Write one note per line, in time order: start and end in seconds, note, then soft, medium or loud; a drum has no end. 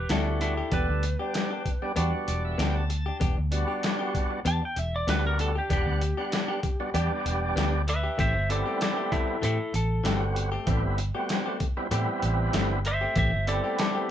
0.09 0.61 D2 medium
0.09 0.55 G3 medium
0.09 0.27 B3 medium
0.09 0.55 B3 medium
0.09 0.55 D4 medium
0.09 0.26 D4 medium
0.09 0.39 E4 medium
0.09 0.55 F#4 medium
0.09 0.25 G4 medium
0.09 0.41 A4 medium
0.09 snare loud
0.09 closed hi-hat medium
0.27 muted clean electric guitar stroke soft
0.41 0.70 E4 medium
0.41 0.72 A4 medium
0.41 muted clean electric guitar stroke soft
0.41 closed hi-hat medium
0.57 0.71 D4 soft
0.57 0.72 G4 medium
0.72 0.86 E1 loud
0.72 1.05 G3 medium
0.72 0.89 B3 medium
0.72 1.05 B3 medium
0.72 1.05 D4 medium
0.72 0.89 D4 medium
0.72 0.88 G4 medium
0.72 1.05 A4 medium
0.72 2.56 B4 medium
0.72 kick loud
0.72 closed hi-hat medium
0.89 1.14 D2 medium
0.89 muted clean electric guitar stroke soft
1.03 muted clean electric guitar stroke soft
1.03 closed hi-hat medium
1.19 1.63 G3 medium
1.19 1.63 B3 medium
1.19 1.63 D4 medium
1.19 1.33 D4 soft
1.19 1.34 G4 soft
1.19 1.63 G4 medium
1.34 muted clean electric guitar stroke soft
1.34 snare medium
1.34 closed hi-hat medium
1.51 1.70 D4 medium
1.51 1.69 G4 medium
1.66 kick medium
1.66 closed hi-hat medium
1.82 1.92 G3 medium
1.82 1.92 B3 medium
1.82 1.92 D4 medium
1.82 1.92 G4 loud
1.82 muted clean electric guitar stroke soft
1.96 2.10 E2 medium
1.96 2.85 G3 medium
1.96 2.13 B3 medium
1.96 2.85 B3 medium
1.96 2.13 D4 medium
1.96 2.85 D4 medium
1.96 2.85 F#4 medium
1.96 2.12 G4 medium
1.96 closed hi-hat medium
2.13 muted clean electric guitar stroke soft
2.27 2.53 E1 medium
2.27 2.43 D5 medium
2.27 muted clean electric guitar stroke soft
2.27 closed hi-hat medium
2.45 2.58 E5 medium
2.58 3.09 D2 medium
2.58 2.75 B3 medium
2.58 2.75 D4 medium
2.58 2.74 G4 medium
2.58 2.75 G5 medium
2.58 snare loud
2.58 closed hi-hat medium
2.75 3.18 A5 medium
2.75 muted clean electric guitar stroke soft
2.89 muted clean electric guitar stroke soft
2.89 closed hi-hat medium
3.06 3.20 D4 soft
3.06 3.20 G4 medium
3.20 3.35 E1 medium
3.20 3.37 B3 medium
3.20 3.37 D4 medium
3.20 3.36 G4 medium
3.20 kick loud
3.20 closed hi-hat medium
3.37 3.63 D2 medium
3.37 muted clean electric guitar stroke medium
3.51 4.40 G3 medium
3.51 4.40 B3 medium
3.51 4.40 D4 medium
3.51 4.40 F#4 medium
3.51 muted clean electric guitar stroke soft
3.51 closed hi-hat medium
3.68 3.82 D4 soft
3.68 3.83 G4 medium
3.82 muted clean electric guitar stroke soft
3.82 snare loud
3.82 closed hi-hat medium
3.99 4.18 D4 soft
3.99 4.17 G4 medium
4.15 kick medium
4.15 closed hi-hat medium
4.31 muted clean electric guitar stroke soft
4.45 4.59 E2 medium
4.45 4.62 B3 medium
4.45 4.62 D4 medium
4.45 4.61 G4 medium
4.45 4.63 A5 loud
4.45 closed hi-hat medium
4.62 4.79 G5 medium
4.62 muted clean electric guitar stroke soft
4.76 5.02 E1 medium
4.76 4.94 E5 medium
4.76 muted clean electric guitar stroke soft
4.76 closed hi-hat medium
4.96 5.08 D5 medium
5.07 5.58 D2 medium
5.07 5.53 G3 medium
5.07 5.24 B3 medium
5.07 5.53 B3 medium
5.07 5.53 D4 medium
5.07 5.24 D4 medium
5.07 5.53 F#4 medium
5.07 5.23 G4 medium
5.07 5.25 B4 loud
5.07 snare loud
5.07 closed hi-hat medium
5.24 5.39 A#4 medium
5.24 muted clean electric guitar stroke soft
5.39 5.56 A4 loud
5.39 muted clean electric guitar stroke soft
5.39 closed hi-hat medium
5.55 5.69 D4 soft
5.55 5.70 G4 medium
5.55 5.71 G4 medium
5.69 5.84 E1 loud
5.69 6.02 G3 medium
5.69 6.03 B3 medium
5.69 5.87 B3 medium
5.69 6.03 D4 medium
5.69 5.87 D4 medium
5.69 5.86 G4 medium
5.69 7.54 G4 loud
5.69 6.03 F#5 medium
5.69 kick loud
5.69 closed hi-hat medium
5.86 6.12 D2 medium
5.86 muted clean electric guitar stroke soft
6.01 muted clean electric guitar stroke soft
6.01 closed hi-hat medium
6.17 6.60 G3 medium
6.17 6.60 B3 medium
6.17 6.60 D4 medium
6.17 6.31 D4 soft
6.17 6.32 G4 soft
6.17 6.61 F#5 medium
6.32 muted clean electric guitar stroke soft
6.32 snare loud
6.32 closed hi-hat medium
6.48 6.67 D4 soft
6.48 6.66 G4 medium
6.63 kick medium
6.63 closed hi-hat medium
6.80 6.90 G3 medium
6.80 6.90 B3 medium
6.80 6.90 D4 medium
6.80 6.90 F#4 loud
6.80 muted clean electric guitar stroke soft
6.94 7.08 E2 medium
6.94 7.82 G3 medium
6.94 7.82 B3 medium
6.94 7.11 B3 medium
6.94 7.82 D4 medium
6.94 7.11 D4 medium
6.94 7.82 G4 loud
6.94 7.10 G4 loud
6.94 closed hi-hat medium
7.11 muted clean electric guitar stroke soft
7.25 7.51 E1 medium
7.25 muted clean electric guitar stroke soft
7.25 closed hi-hat medium
7.56 8.07 D2 medium
7.56 7.73 B3 medium
7.56 7.73 D4 medium
7.56 7.72 G4 medium
7.56 snare loud
7.56 closed hi-hat medium
7.73 muted clean electric guitar stroke soft
7.87 8.19 B4 medium
7.87 8.19 E5 loud
7.87 muted clean electric guitar stroke soft
7.87 closed hi-hat medium
8.03 8.18 D4 soft
8.03 8.18 G4 soft
8.18 8.32 A1 medium
8.18 8.35 E3 medium
8.18 8.35 A3 medium
8.18 8.34 C4 medium
8.18 8.33 G4 medium
8.18 8.48 C5 medium
8.18 8.50 E5 medium
8.18 kick loud
8.18 closed hi-hat medium
8.35 8.61 G1 medium
8.35 muted clean electric guitar stroke soft
8.49 9.38 G3 medium
8.49 9.38 B3 medium
8.49 9.38 C4 medium
8.49 9.38 E4 medium
8.49 8.79 A4 medium
8.49 8.81 D5 medium
8.49 muted clean electric guitar stroke soft
8.49 closed hi-hat medium
8.66 8.80 A3 soft
8.66 8.80 C4 soft
8.66 8.80 G4 soft
8.81 9.10 A4 medium
8.81 9.12 D5 medium
8.81 muted clean electric guitar stroke soft
8.81 snare loud
8.81 closed hi-hat medium
8.97 9.16 A3 soft
8.97 9.15 C4 medium
8.97 9.15 G4 medium
9.12 9.41 E4 medium
9.12 9.43 A4 medium
9.12 kick medium
9.12 closed hi-hat medium
9.28 muted clean electric guitar stroke soft
9.42 9.57 A2 medium
9.42 9.59 E3 medium
9.42 9.59 A3 medium
9.42 9.58 C4 medium
9.42 9.72 E4 medium
9.42 9.58 G4 medium
9.42 9.74 A4 loud
9.42 closed hi-hat medium
9.59 muted clean electric guitar stroke soft
9.73 9.99 A1 medium
9.73 10.95 A4 medium
9.73 muted clean electric guitar stroke soft
9.73 closed hi-hat medium
10.04 10.56 G1 medium
10.04 10.21 E3 medium
10.04 10.50 G3 medium
10.04 10.22 A3 medium
10.04 10.50 B3 medium
10.04 10.50 C4 medium
10.04 10.21 C4 medium
10.04 10.50 F#4 medium
10.04 10.20 G4 medium
10.04 snare loud
10.04 closed hi-hat medium
10.21 muted clean electric guitar stroke soft
10.35 muted clean electric guitar stroke soft
10.35 closed hi-hat medium
10.52 10.66 A3 soft
10.52 10.66 C4 soft
10.52 10.67 G4 medium
10.66 10.81 A1 medium
10.66 10.84 E3 medium
10.66 11.00 G3 medium
10.66 10.83 A3 medium
10.66 11.00 B3 medium
10.66 11.00 C4 medium
10.66 10.83 C4 medium
10.66 11.00 E4 medium
10.66 10.82 G4 medium
10.66 kick loud
10.66 closed hi-hat medium
10.83 11.10 G1 medium
10.83 muted clean electric guitar stroke soft
10.98 muted clean electric guitar stroke soft
10.98 closed hi-hat medium
11.14 11.58 G3 medium
11.14 11.28 A3 soft
11.14 11.57 B3 medium
11.14 11.58 C4 medium
11.14 11.29 C4 soft
11.14 11.58 F#4 medium
11.14 11.29 G4 soft
11.29 muted clean electric guitar stroke soft
11.29 snare loud
11.29 closed hi-hat medium
11.46 11.65 A3 medium
11.46 11.64 C4 medium
11.46 11.64 G4 medium
11.60 kick medium
11.60 closed hi-hat medium
11.77 11.87 G3 medium
11.77 11.87 B3 medium
11.77 11.87 C4 medium
11.77 11.87 E4 loud
11.77 muted clean electric guitar stroke medium
11.91 12.05 A2 medium
11.91 12.08 E3 medium
11.91 12.79 G3 medium
11.91 12.08 A3 medium
11.91 12.80 B3 medium
11.91 12.80 C4 medium
11.91 12.08 C4 medium
11.91 12.80 E4 loud
11.91 12.07 G4 loud
11.91 closed hi-hat medium
12.08 muted clean electric guitar stroke soft
12.22 12.48 A1 medium
12.22 muted clean electric guitar stroke soft
12.22 closed hi-hat medium
12.53 13.05 G1 medium
12.53 12.71 E3 medium
12.53 12.71 A3 medium
12.53 12.70 C4 medium
12.53 12.69 G4 medium
12.53 snare loud
12.53 closed hi-hat medium
12.71 muted clean electric guitar stroke soft
12.85 13.17 C5 medium
12.85 13.16 E5 loud
12.85 muted clean electric guitar stroke soft
12.85 closed hi-hat medium
13.01 13.15 A3 soft
13.01 13.16 C4 soft
13.01 13.16 G4 soft
13.16 13.30 A1 medium
13.16 13.33 E3 medium
13.16 13.32 A3 medium
13.16 13.32 C4 medium
13.16 13.31 G4 medium
13.16 13.46 C5 medium
13.16 13.48 E5 medium
13.16 kick loud
13.16 closed hi-hat medium
13.32 13.58 G1 medium
13.32 muted clean electric guitar stroke soft
13.47 14.11 G3 medium
13.47 14.11 B3 medium
13.47 14.11 C4 medium
13.47 14.11 E4 medium
13.47 13.77 A4 medium
13.47 13.78 D5 medium
13.47 muted clean electric guitar stroke soft
13.47 closed hi-hat medium
13.64 13.77 A3 soft
13.64 13.78 C4 soft
13.64 13.78 G4 soft
13.78 14.08 A4 medium
13.78 14.09 D5 medium
13.78 muted clean electric guitar stroke soft
13.78 snare loud
13.78 closed hi-hat medium
13.95 14.11 A3 soft
13.95 14.11 C4 soft
13.95 14.11 G4 medium